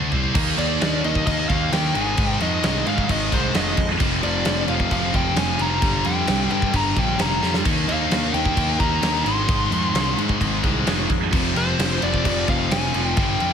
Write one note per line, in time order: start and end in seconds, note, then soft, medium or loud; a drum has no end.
0.00 0.10 D2 medium
0.00 0.11 D3 medium
0.00 0.11 A3 medium
0.00 0.11 D4 medium
0.12 0.34 C2 medium
0.12 0.34 C3 medium
0.12 0.34 G3 loud
0.12 0.34 C4 medium
0.12 floor tom medium
0.24 floor tom medium
0.35 0.54 D#2 medium
0.35 0.56 D#3 loud
0.35 0.57 A#3 medium
0.35 0.58 D#4 medium
0.35 kick loud
0.35 crash loud
0.35 crash medium
0.58 0.77 D#2 medium
0.58 0.79 D#3 medium
0.58 0.80 A#3 medium
0.58 0.81 D#4 medium
0.58 1.01 D5 medium
0.58 crash medium
0.80 1.00 D#2 medium
0.80 1.02 D#3 loud
0.80 1.03 A#3 loud
0.80 1.04 D#4 loud
0.80 snare loud
0.80 crash medium
1.03 1.23 D#2 medium
1.03 1.24 D#3 medium
1.03 1.25 A#3 medium
1.03 1.26 D#4 medium
1.03 1.26 D#5 medium
1.03 crash medium
1.15 kick medium
1.25 1.45 D#2 medium
1.25 1.49 D#3 loud
1.25 1.49 A#3 loud
1.25 1.50 D#4 medium
1.25 1.48 D#5 medium
1.25 kick loud
1.25 crash medium
1.49 1.68 D#2 loud
1.49 1.71 D#3 medium
1.49 1.72 A#3 medium
1.49 1.73 D#4 medium
1.49 1.72 F5 loud
1.49 kick medium
1.49 crash medium
1.72 1.91 D#2 medium
1.72 1.94 D#3 medium
1.72 1.94 A#3 medium
1.72 1.94 D#4 loud
1.72 1.95 G5 loud
1.72 snare loud
1.72 crash medium
1.85 snare soft
1.95 2.14 G#1 medium
1.95 2.16 G#2 loud
1.95 2.17 D#3 loud
1.95 2.19 G#3 loud
1.95 2.37 G#5 loud
1.95 crash medium
2.17 2.36 G#1 medium
2.17 2.40 G#2 medium
2.17 2.41 D#3 medium
2.17 2.42 G#3 loud
2.17 kick loud
2.17 crash medium
2.40 2.59 F2 medium
2.40 2.62 G#2 medium
2.40 2.63 D#3 medium
2.40 2.64 G#3 medium
2.40 2.87 D#5 loud
2.40 crash medium
2.63 2.82 C2 medium
2.63 2.85 G#2 medium
2.63 2.86 D#3 medium
2.63 2.87 G#3 loud
2.63 snare loud
2.63 crash medium
2.86 3.08 G#2 medium
2.86 3.05 G#2 medium
2.86 3.08 D#3 medium
2.86 3.09 G#3 medium
2.86 3.10 F5 medium
2.86 crash medium
2.98 kick medium
3.09 3.28 G#1 loud
3.09 3.30 G#2 loud
3.09 3.31 D#3 loud
3.09 3.32 G#3 loud
3.09 3.31 D#5 medium
3.09 kick loud
3.09 crash medium
3.31 3.51 C2 loud
3.31 3.53 G#2 medium
3.31 3.54 D#3 medium
3.31 3.54 G#3 medium
3.31 3.56 C5 medium
3.31 kick medium
3.31 crash medium
3.54 3.73 F1 loud
3.54 3.76 G#2 loud
3.54 3.77 D#3 loud
3.54 3.77 G#3 loud
3.54 3.87 D#5 medium
3.54 snare loud
3.54 crash medium
3.77 3.96 F2 medium
3.77 3.98 G#2 medium
3.77 3.99 D#3 loud
3.77 3.99 G#3 loud
3.77 kick medium
3.77 crash medium
3.99 4.19 F1 medium
3.99 4.22 F2 medium
3.99 4.22 C3 loud
3.99 4.23 F3 loud
3.99 kick loud
3.99 crash medium
4.23 4.42 F1 medium
4.23 4.44 F2 medium
4.23 4.45 C3 medium
4.23 4.46 F3 medium
4.23 4.65 D5 medium
4.23 crash medium
4.45 4.64 F1 medium
4.45 4.67 F2 medium
4.45 4.68 C3 loud
4.45 4.69 F3 loud
4.45 snare loud
4.45 crash medium
4.68 4.87 F1 medium
4.68 4.89 F2 medium
4.68 4.90 C3 medium
4.68 4.91 F3 medium
4.68 4.92 F5 loud
4.68 crash medium
4.80 kick medium
4.91 5.10 F1 medium
4.91 5.12 F2 medium
4.91 5.12 C3 loud
4.91 5.13 F3 loud
4.91 5.15 F5 medium
4.91 kick medium
4.91 crash medium
5.13 5.33 F1 medium
5.13 5.35 F2 medium
5.13 5.35 C3 medium
5.13 5.36 F3 medium
5.13 5.38 G5 loud
5.13 kick medium
5.13 crash medium
5.36 5.55 F1 medium
5.36 5.57 F2 loud
5.36 5.58 C3 medium
5.36 5.58 F3 loud
5.36 5.61 G#5 loud
5.36 snare loud
5.36 crash medium
5.49 snare soft
5.58 5.78 F1 medium
5.58 5.80 F2 loud
5.58 5.81 C3 loud
5.58 5.81 F3 loud
5.58 6.07 A#5 loud
5.58 crash medium
5.81 6.01 G1 medium
5.81 6.03 G2 medium
5.81 6.04 D3 medium
5.81 6.05 G3 loud
5.81 kick loud
5.81 crash medium
6.04 6.24 F2 medium
6.04 6.25 G2 medium
6.04 6.26 D3 medium
6.04 6.27 G3 loud
6.04 6.48 G5 loud
6.04 crash medium
6.27 6.47 C2 medium
6.27 6.48 G2 loud
6.27 6.49 D3 loud
6.27 6.50 G3 loud
6.27 snare loud
6.27 crash medium
6.50 6.72 G2 medium
6.50 6.70 G2 medium
6.50 6.73 D3 medium
6.50 6.73 G3 medium
6.50 6.73 G5 medium
6.50 crash soft
6.62 kick medium
6.73 6.92 G1 medium
6.73 6.95 G2 loud
6.73 6.96 D3 loud
6.73 6.97 G3 loud
6.73 6.98 A#5 loud
6.73 kick loud
6.73 crash medium
6.96 7.15 A#1 medium
6.96 7.18 G2 medium
6.96 7.18 D3 medium
6.96 7.19 G3 medium
6.96 7.21 G5 medium
6.96 kick medium
6.96 crash medium
7.19 7.39 F1 medium
7.19 7.40 G2 medium
7.19 7.41 D3 loud
7.19 7.42 G3 loud
7.19 7.52 A#5 medium
7.19 snare loud
7.19 crash medium
7.42 7.61 F2 medium
7.42 7.64 G2 medium
7.42 7.64 D3 medium
7.42 7.64 G3 loud
7.42 snare medium
7.54 snare medium
7.65 7.84 D#2 medium
7.65 7.87 D#3 loud
7.65 7.88 A#3 loud
7.65 7.89 D#4 medium
7.65 kick loud
7.65 crash loud
7.88 8.07 D#2 medium
7.88 8.10 D#3 medium
7.88 8.11 A#3 medium
7.88 8.12 D#4 medium
7.88 8.34 F5 medium
7.88 crash medium
8.11 8.30 D#2 medium
8.11 8.33 D#3 medium
8.11 8.34 A#3 loud
8.11 8.35 D#4 loud
8.11 snare loud
8.11 crash medium
8.33 8.53 D#2 medium
8.33 8.56 D#3 medium
8.33 8.57 A#3 medium
8.33 8.57 D#4 medium
8.33 8.77 G5 medium
8.33 crash medium
8.46 kick medium
8.57 8.76 D#2 medium
8.57 8.78 D#3 medium
8.57 8.79 A#3 loud
8.57 8.80 D#4 loud
8.57 kick loud
8.57 crash medium
8.79 8.99 D#2 medium
8.79 9.01 D#3 medium
8.79 9.01 A#3 medium
8.79 9.02 D#4 medium
8.79 9.24 A#5 loud
8.79 kick medium
8.79 crash medium
9.02 9.21 D#2 medium
9.02 9.24 D#3 loud
9.02 9.24 A#3 loud
9.02 9.25 D#4 loud
9.02 snare loud
9.02 crash medium
9.15 snare soft
9.24 9.45 G#1 medium
9.24 9.46 G#2 loud
9.24 9.47 D#3 loud
9.24 9.49 G#3 loud
9.24 10.59 C6 loud
9.24 crash medium
9.48 9.68 G#1 medium
9.48 9.70 G#2 medium
9.48 9.71 D#3 loud
9.48 9.72 G#3 loud
9.48 kick loud
9.48 crash medium
9.71 9.90 F2 medium
9.71 9.93 G#2 medium
9.71 9.93 D#3 medium
9.71 9.95 G#3 medium
9.71 crash medium
9.94 10.13 C2 medium
9.94 10.16 G#2 medium
9.94 10.17 D#3 loud
9.94 10.18 G#3 loud
9.94 snare loud
9.94 crash medium
10.17 10.36 G#2 medium
10.17 10.39 G#2 medium
10.17 10.39 D#3 medium
10.17 10.40 G#3 medium
10.17 crash medium
10.29 kick medium
10.40 10.60 G#1 loud
10.40 10.61 G#2 loud
10.40 10.62 D#3 loud
10.40 10.63 G#3 loud
10.40 kick loud
10.40 crash medium
10.63 10.83 C2 loud
10.63 10.84 G#2 medium
10.63 10.85 D#3 medium
10.63 10.85 G#3 loud
10.63 kick medium
10.63 crash medium
10.85 11.05 F1 loud
10.85 11.08 G#2 loud
10.85 11.08 D#3 loud
10.85 11.08 G#3 loud
10.85 snare loud
10.85 crash medium
11.09 11.35 F2 medium
11.09 11.31 G#2 loud
11.09 11.31 D#3 medium
11.09 11.31 G#3 loud
11.09 kick medium
11.09 crash medium
11.32 11.52 F1 medium
11.32 11.54 F2 medium
11.32 11.54 C3 loud
11.32 11.55 F3 medium
11.32 kick loud
11.32 crash medium
11.55 11.74 F1 medium
11.55 11.77 F2 medium
11.55 11.78 C3 loud
11.55 11.78 F3 loud
11.55 12.04 C5 medium
11.55 crash medium
11.78 11.98 F1 medium
11.78 12.00 F2 loud
11.78 12.01 C3 loud
11.78 12.02 F3 loud
11.78 snare loud
11.78 crash loud
12.02 12.21 F1 medium
12.02 12.23 F2 medium
12.02 12.24 C3 medium
12.02 12.25 F3 medium
12.02 12.25 D5 medium
12.02 crash medium
12.14 kick medium
12.25 12.44 F1 medium
12.25 12.47 F2 loud
12.25 12.48 C3 loud
12.25 12.48 F3 loud
12.25 12.49 D5 medium
12.25 kick loud
12.25 crash medium
12.48 12.67 F1 medium
12.48 12.69 F2 medium
12.48 12.70 C3 medium
12.48 12.71 F3 loud
12.48 12.73 F5 medium
12.48 kick medium
12.48 crash medium
12.70 12.90 F1 loud
12.70 12.93 F2 loud
12.70 12.94 C3 loud
12.70 12.94 F3 loud
12.70 13.17 G#5 loud
12.70 snare loud
12.70 crash medium
12.83 snare soft
12.94 13.13 F1 medium
12.94 13.15 F2 medium
12.94 13.16 C3 loud
12.94 13.16 F3 loud
12.94 crash medium
13.17 13.36 G1 medium
13.17 13.39 G2 medium
13.17 13.40 D3 loud
13.17 13.40 G3 loud
13.17 13.53 G5 loud
13.17 kick loud
13.17 crash medium
13.40 13.53 F2 medium
13.40 13.53 G2 medium
13.40 13.53 D3 medium
13.40 13.53 G3 medium
13.40 crash medium